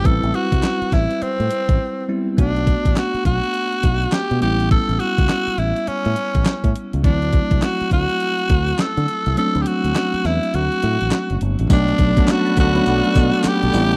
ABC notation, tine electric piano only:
X:1
M:4/4
L:1/16
Q:"Swing 16ths" 1/4=103
K:Bphr
V:1 name="Tine electric piano"
[G,CEB]12- [G,CEB]2 [G,B,CE]2 | [A,B,DF]12- [A,B,DF]2 [G,B,^CE]2- | [G,B,^CE]12- [G,B,CE]2 z2 | [E,F,A,CE]16 |
[F,A,CD]16 | [F,A,B,D]3 [F,A,B,^CD]3 z [F,A,B,D]6- [F,A,B,D] [G,B,=C^CE]2 |]